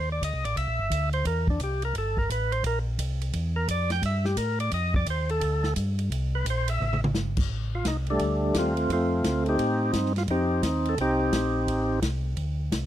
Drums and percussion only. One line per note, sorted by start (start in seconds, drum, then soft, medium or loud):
0.22 kick soft
0.22 hi-hat pedal medium
0.22 ride medium
0.45 ride medium
0.57 kick soft
0.57 ride medium
0.91 kick soft
0.91 hi-hat pedal medium
0.91 ride medium
1.13 ride soft
1.25 kick soft
1.25 ride medium
1.47 kick medium
1.60 kick soft
1.60 hi-hat pedal medium
1.60 ride medium
1.82 ride medium
1.95 kick soft
1.95 ride medium
2.17 kick soft
2.30 kick soft
2.30 hi-hat pedal medium
2.30 ride medium
2.52 ride soft
2.64 kick soft
2.64 ride medium
2.99 kick soft
2.99 hi-hat pedal medium
2.99 ride medium
3.21 ride medium
3.33 kick soft
3.33 ride medium
3.68 kick soft
3.68 hi-hat pedal medium
3.68 ride medium
3.90 snare soft
3.90 ride medium
4.03 kick soft
4.03 ride medium
4.25 snare soft
4.37 kick soft
4.37 hi-hat pedal medium
4.37 ride medium
4.60 ride medium
4.72 kick soft
4.72 ride medium
4.94 kick medium
5.06 kick soft
5.06 hi-hat pedal medium
5.06 ride medium
5.29 ride soft
5.41 kick soft
5.41 ride medium
5.64 snare soft
5.76 kick soft
5.76 hi-hat pedal medium
5.76 ride medium
5.99 ride soft
6.11 kick soft
6.11 ride medium
6.46 kick soft
6.46 hi-hat pedal medium
6.46 ride medium
6.68 ride medium
6.81 mid tom medium
6.93 mid tom medium
7.04 mid tom medium
7.14 snare medium
7.14 hi-hat pedal medium
7.37 kick medium
7.37 crash medium
7.50 kick soft
7.85 kick soft
7.85 snare medium
7.85 hi-hat pedal medium
7.85 ride medium
8.06 ride soft
8.19 kick soft
8.19 ride medium
8.54 kick soft
8.54 snare medium
8.54 hi-hat pedal medium
8.54 ride medium
8.77 ride soft
8.89 kick soft
8.89 ride medium
9.24 kick soft
9.24 snare medium
9.24 hi-hat pedal medium
9.24 ride medium
9.46 ride soft
9.59 kick soft
9.59 ride medium
9.93 kick soft
9.93 snare medium
9.93 hi-hat pedal medium
9.93 ride medium
10.06 snare soft
10.16 snare soft
10.16 ride soft
10.28 kick soft
10.28 ride medium
10.63 kick soft
10.63 snare medium
10.63 hi-hat pedal soft
10.63 ride medium
10.85 ride soft
10.98 kick soft
10.98 ride medium
11.32 kick soft
11.32 snare medium
11.32 hi-hat pedal medium
11.32 ride medium
11.67 kick soft
11.67 ride medium
12.02 kick soft
12.02 snare medium
12.02 hi-hat pedal medium
12.02 ride medium
12.37 kick soft
12.37 ride medium
12.72 kick soft
12.72 snare medium
12.72 hi-hat pedal medium
12.72 ride medium